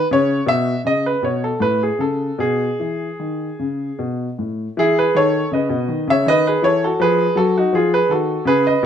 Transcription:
0.11 0.37 C#3 medium
0.11 0.43 C#5 loud
0.46 0.73 B2 medium
0.46 0.79 E5 loud
0.85 1.12 C#3 medium
0.85 1.04 D#5 medium
1.06 1.23 B4 medium
1.23 1.50 B2 medium
1.23 1.42 C#5 medium
1.44 1.62 A4 medium
1.60 1.88 A2 medium
1.60 1.80 B4 medium
1.83 2.01 G#4 medium
1.99 2.27 C#3 medium
1.99 2.40 A4 medium
2.39 2.67 B2 medium
2.39 3.98 G#4 medium
2.80 3.08 E3 medium
3.20 3.48 D#3 soft
3.59 3.87 C#3 soft
3.99 4.27 B2 medium
4.39 4.66 A2 soft
4.77 5.04 E3 medium
4.77 4.96 E4 medium
4.77 4.97 G#4 loud
4.99 5.15 G#4 medium
4.99 5.16 B4 medium
5.15 5.41 D#3 medium
5.15 5.51 A4 medium
5.15 5.47 C#5 loud
5.51 5.69 C#3 medium
5.51 6.05 B4 medium
5.51 6.09 D#5 medium
5.69 5.87 B2 medium
5.88 6.06 D#3 medium
6.07 6.25 C#3 medium
6.07 6.28 E5 loud
6.12 6.27 C#5 medium
6.26 6.53 D#3 medium
6.26 6.45 B4 medium
6.26 6.46 D#5 loud
6.47 6.64 G#4 medium
6.47 6.65 B4 medium
6.62 6.89 E3 medium
6.62 6.82 A4 medium
6.62 6.82 C#5 loud
6.84 7.01 F#4 medium
6.84 7.01 A4 medium
7.00 7.26 F3 medium
7.00 7.36 G#4 medium
7.00 7.37 B4 loud
7.35 7.62 F#3 medium
7.35 7.55 F#4 medium
7.35 7.55 A4 loud
7.58 7.74 D#4 medium
7.58 7.75 F#4 medium
7.73 7.99 F3 medium
7.73 7.92 F4 medium
7.73 7.92 G#4 medium
7.94 8.10 G#4 medium
7.94 8.11 B4 medium
8.09 8.36 D#3 medium
8.09 8.45 F#4 medium
8.09 8.46 A4 medium
8.45 8.72 C#3 medium
8.45 8.64 G#4 medium
8.45 8.65 B4 loud
8.67 8.83 B4 medium
8.67 8.84 D#5 medium
8.83 8.86 B2 medium

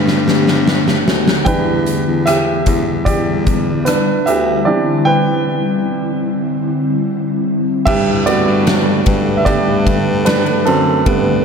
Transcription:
0.00 1.02 G2 loud
0.00 7.83 D3 medium
0.00 1.46 G3 soft
0.00 1.43 A3 medium
0.00 1.49 A3 soft
0.00 1.48 B3 medium
0.00 4.63 B3 medium
0.00 1.47 D4 medium
0.00 1.43 G4 medium
0.00 1.48 A4 medium
0.00 1.02 B4 medium
0.08 snare soft
0.28 snare medium
0.48 snare medium
0.68 snare medium
0.88 snare medium
1.06 1.48 D2 medium
1.06 snare medium
1.28 snare medium
1.45 2.03 E2 medium
1.45 2.62 E3 soft
1.45 2.63 G3 soft
1.45 7.83 G3 medium
1.45 2.63 D4 medium
1.45 7.83 E4 medium
1.45 2.23 B4 medium
1.45 2.28 G5 medium
1.45 kick loud
1.45 closed hi-hat medium
1.86 closed hi-hat medium
2.07 2.63 E2 medium
2.26 3.03 G4 medium
2.26 3.09 E5 medium
2.26 cross-stick medium
2.26 closed hi-hat medium
2.66 3.04 E2 medium
2.66 kick medium
2.66 closed hi-hat medium
3.05 3.96 E2 loud
3.05 3.83 G4 medium
3.05 3.88 D5 medium
3.05 kick medium
3.05 closed hi-hat medium
3.47 kick medium
3.47 closed hi-hat medium
3.85 4.24 D4 medium
3.85 4.27 B4 medium
3.85 cross-stick loud
3.85 closed hi-hat medium
4.26 4.64 D2 medium
4.26 4.64 G4 medium
4.26 4.63 E5 medium
4.26 closed hi-hat medium
4.65 5.82 E3 medium
4.65 5.82 C4 soft
4.65 7.83 C4 medium
4.65 5.83 D4 medium
4.65 5.04 G4 medium
4.65 5.03 D5 medium
5.05 7.43 B4 medium
5.05 7.42 G5 loud
7.85 8.43 G2 medium
7.85 11.45 D3 medium
7.85 11.45 A3 medium
7.85 8.24 G4 medium
7.85 11.45 A4 medium
7.85 11.45 B4 medium
7.85 8.27 E5 loud
7.85 kick loud
7.85 crash loud
8.26 8.80 G3 medium
8.26 8.80 A3 soft
8.26 8.80 B3 medium
8.26 9.36 F#4 medium
8.26 9.35 D5 loud
8.26 ride medium
8.47 9.03 G2 medium
8.67 snare loud
8.67 ride medium
9.06 9.44 G2 loud
9.06 kick loud
9.06 ride medium
9.37 9.45 E5 medium
9.45 10.63 G2 loud
9.45 9.82 G3 soft
9.45 9.82 A3 soft
9.45 9.83 B3 soft
9.45 10.23 G4 medium
9.45 10.28 D5 medium
9.45 kick medium
9.45 ride medium
9.87 kick medium
9.87 ride medium
10.25 10.64 D4 medium
10.25 10.67 B4 medium
10.25 snare loud
10.25 ride medium
10.46 ride soft
10.65 11.04 F#2 medium
10.65 11.45 C4 medium
10.65 11.45 A4 medium
10.65 ride soft
11.05 11.45 G2 medium
11.05 11.45 G3 medium
11.05 11.45 A3 soft
11.05 11.45 B3 medium
11.05 kick loud
11.05 ride medium

